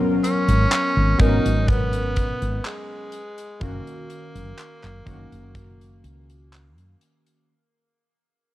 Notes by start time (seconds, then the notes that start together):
Already playing: F#3 B3 C#4 A#4
0.24 C#4, closed hi-hat
0.48 G#1, closed hi-hat
0.72 clap, closed hi-hat
0.97 G#1
1.18 G#1 F#3 B3 C#4 D#4 A#4, kick, closed hi-hat
1.45 G#1, closed hi-hat
1.68 B3, kick, closed hi-hat
1.93 closed hi-hat
2.16 kick, closed hi-hat
2.42 G#1, closed hi-hat
2.65 G#3, clap, closed hi-hat
3.12 closed hi-hat
3.38 closed hi-hat
3.60 F#1 D#3 A#3 C#4 F#4, kick, closed hi-hat
3.87 closed hi-hat
4.10 closed hi-hat
4.35 F#1, closed hi-hat
4.58 clap, closed hi-hat
4.84 F#1, clap, closed hi-hat
5.05 F#1 D#3 A#3 C#4 F#4, kick, closed hi-hat
5.32 F#1, closed hi-hat
5.55 kick, closed hi-hat
5.81 closed hi-hat
6.04 C#2, closed hi-hat
6.29 closed hi-hat
6.53 clap, closed hi-hat
6.78 F#2, closed hi-hat
7.01 closed hi-hat
7.26 closed hi-hat